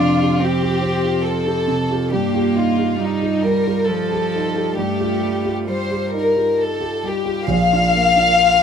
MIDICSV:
0, 0, Header, 1, 4, 480
1, 0, Start_track
1, 0, Tempo, 858369
1, 1175, Time_signature, 3, 2, 24, 8
1, 1664, Tempo, 899550
1, 4681, End_track
2, 0, Start_track
2, 0, Title_t, "Violin section"
2, 0, Program_c, 0, 48
2, 0, Note_on_c, 0, 65, 57
2, 220, Note_off_c, 0, 65, 0
2, 232, Note_on_c, 0, 67, 59
2, 698, Note_off_c, 0, 67, 0
2, 706, Note_on_c, 0, 69, 57
2, 1182, Note_off_c, 0, 69, 0
2, 1183, Note_on_c, 0, 67, 48
2, 1418, Note_off_c, 0, 67, 0
2, 1425, Note_on_c, 0, 65, 46
2, 1667, Note_off_c, 0, 65, 0
2, 1669, Note_on_c, 0, 63, 44
2, 1902, Note_off_c, 0, 63, 0
2, 1908, Note_on_c, 0, 70, 51
2, 2136, Note_on_c, 0, 69, 49
2, 2142, Note_off_c, 0, 70, 0
2, 2617, Note_on_c, 0, 67, 43
2, 2618, Note_off_c, 0, 69, 0
2, 3048, Note_off_c, 0, 67, 0
2, 3104, Note_on_c, 0, 72, 48
2, 3331, Note_off_c, 0, 72, 0
2, 3355, Note_on_c, 0, 70, 43
2, 3590, Note_on_c, 0, 69, 47
2, 3595, Note_off_c, 0, 70, 0
2, 3834, Note_on_c, 0, 67, 45
2, 3835, Note_off_c, 0, 69, 0
2, 4069, Note_on_c, 0, 77, 80
2, 4074, Note_off_c, 0, 67, 0
2, 4681, Note_off_c, 0, 77, 0
2, 4681, End_track
3, 0, Start_track
3, 0, Title_t, "Grand piano"
3, 0, Program_c, 1, 0
3, 0, Control_c, 1, 64, 127
3, 0, Note_on_c, 1, 41, 52
3, 0, Note_on_c, 1, 48, 42
3, 0, Note_on_c, 1, 65, 37
3, 0, Note_on_c, 1, 67, 38
3, 114, Note_off_c, 1, 65, 0
3, 114, Note_on_c, 1, 65, 33
3, 119, Note_off_c, 1, 67, 0
3, 119, Note_on_c, 1, 67, 36
3, 180, Note_off_c, 1, 48, 0
3, 323, Note_off_c, 1, 65, 0
3, 326, Note_off_c, 1, 67, 0
3, 347, Note_on_c, 1, 67, 37
3, 348, Note_on_c, 1, 65, 33
3, 450, Note_off_c, 1, 65, 0
3, 450, Note_off_c, 1, 67, 0
3, 456, Note_on_c, 1, 60, 42
3, 579, Note_on_c, 1, 65, 34
3, 581, Note_on_c, 1, 67, 36
3, 645, Note_off_c, 1, 60, 0
3, 791, Note_off_c, 1, 65, 0
3, 793, Note_off_c, 1, 67, 0
3, 813, Note_on_c, 1, 65, 32
3, 818, Note_on_c, 1, 67, 37
3, 921, Note_off_c, 1, 65, 0
3, 923, Note_off_c, 1, 67, 0
3, 936, Note_on_c, 1, 48, 38
3, 1060, Note_on_c, 1, 65, 34
3, 1067, Note_on_c, 1, 67, 38
3, 1128, Note_off_c, 1, 48, 0
3, 1166, Note_off_c, 1, 65, 0
3, 1170, Note_off_c, 1, 67, 0
3, 1183, Note_on_c, 1, 43, 47
3, 1186, Control_c, 1, 64, 0
3, 1190, Note_off_c, 1, 41, 0
3, 1263, Control_c, 1, 64, 127
3, 1297, Note_off_c, 1, 43, 0
3, 1306, Note_on_c, 1, 65, 35
3, 1312, Note_on_c, 1, 67, 38
3, 1412, Note_off_c, 1, 65, 0
3, 1416, Note_off_c, 1, 67, 0
3, 1432, Note_on_c, 1, 63, 36
3, 1550, Note_on_c, 1, 65, 34
3, 1554, Note_on_c, 1, 67, 33
3, 1622, Note_off_c, 1, 63, 0
3, 1764, Note_off_c, 1, 65, 0
3, 1766, Note_off_c, 1, 67, 0
3, 1788, Note_on_c, 1, 65, 29
3, 1793, Note_on_c, 1, 67, 30
3, 1891, Note_off_c, 1, 65, 0
3, 1894, Note_off_c, 1, 67, 0
3, 1916, Note_on_c, 1, 55, 35
3, 2032, Note_on_c, 1, 65, 31
3, 2033, Note_on_c, 1, 67, 34
3, 2098, Note_off_c, 1, 55, 0
3, 2243, Note_off_c, 1, 65, 0
3, 2243, Note_off_c, 1, 67, 0
3, 2273, Note_on_c, 1, 67, 31
3, 2274, Note_on_c, 1, 65, 30
3, 2374, Note_off_c, 1, 65, 0
3, 2374, Note_off_c, 1, 67, 0
3, 2396, Note_on_c, 1, 63, 31
3, 2502, Note_on_c, 1, 65, 31
3, 2504, Note_on_c, 1, 67, 31
3, 2579, Note_off_c, 1, 63, 0
3, 2609, Note_off_c, 1, 65, 0
3, 2610, Note_off_c, 1, 67, 0
3, 2618, Note_on_c, 1, 43, 41
3, 2628, Control_c, 1, 64, 0
3, 2725, Control_c, 1, 64, 127
3, 2737, Note_off_c, 1, 43, 0
3, 2742, Note_on_c, 1, 65, 31
3, 2742, Note_on_c, 1, 67, 34
3, 2851, Note_off_c, 1, 65, 0
3, 2851, Note_off_c, 1, 67, 0
3, 2868, Note_on_c, 1, 55, 34
3, 2979, Note_on_c, 1, 65, 27
3, 2986, Note_on_c, 1, 67, 30
3, 3061, Note_off_c, 1, 55, 0
3, 3204, Note_off_c, 1, 65, 0
3, 3207, Note_off_c, 1, 67, 0
3, 3224, Note_on_c, 1, 65, 28
3, 3227, Note_on_c, 1, 67, 30
3, 3335, Note_off_c, 1, 65, 0
3, 3337, Note_off_c, 1, 67, 0
3, 3347, Note_on_c, 1, 63, 31
3, 3468, Note_on_c, 1, 65, 29
3, 3472, Note_on_c, 1, 67, 30
3, 3542, Note_off_c, 1, 63, 0
3, 3691, Note_off_c, 1, 65, 0
3, 3693, Note_off_c, 1, 67, 0
3, 3707, Note_on_c, 1, 65, 25
3, 3707, Note_on_c, 1, 67, 32
3, 3820, Note_off_c, 1, 65, 0
3, 3820, Note_off_c, 1, 67, 0
3, 3830, Note_on_c, 1, 55, 30
3, 3944, Note_on_c, 1, 65, 31
3, 3944, Note_on_c, 1, 67, 32
3, 4025, Note_off_c, 1, 55, 0
3, 4056, Note_off_c, 1, 65, 0
3, 4056, Note_off_c, 1, 67, 0
3, 4064, Note_on_c, 1, 34, 51
3, 4084, Control_c, 1, 64, 0
3, 4165, Control_c, 1, 64, 127
3, 4183, Note_off_c, 1, 34, 0
3, 4198, Note_on_c, 1, 62, 39
3, 4198, Note_on_c, 1, 65, 43
3, 4300, Note_off_c, 1, 65, 0
3, 4301, Note_off_c, 1, 62, 0
3, 4317, Note_on_c, 1, 58, 40
3, 4428, Note_on_c, 1, 62, 34
3, 4429, Note_on_c, 1, 65, 39
3, 4501, Note_off_c, 1, 58, 0
3, 4643, Note_off_c, 1, 62, 0
3, 4643, Note_off_c, 1, 65, 0
3, 4681, End_track
4, 0, Start_track
4, 0, Title_t, "Cello"
4, 0, Program_c, 2, 42
4, 0, Note_on_c, 2, 62, 78
4, 224, Note_on_c, 2, 60, 60
4, 232, Note_off_c, 2, 62, 0
4, 933, Note_off_c, 2, 60, 0
4, 1178, Note_on_c, 2, 58, 70
4, 1664, Note_on_c, 2, 55, 61
4, 1672, Note_off_c, 2, 58, 0
4, 2142, Note_on_c, 2, 53, 54
4, 2150, Note_off_c, 2, 55, 0
4, 2618, Note_off_c, 2, 53, 0
4, 2621, Note_on_c, 2, 57, 63
4, 3100, Note_on_c, 2, 55, 46
4, 3108, Note_off_c, 2, 57, 0
4, 3589, Note_off_c, 2, 55, 0
4, 4537, Note_on_c, 2, 65, 61
4, 4681, Note_off_c, 2, 65, 0
4, 4681, End_track
0, 0, End_of_file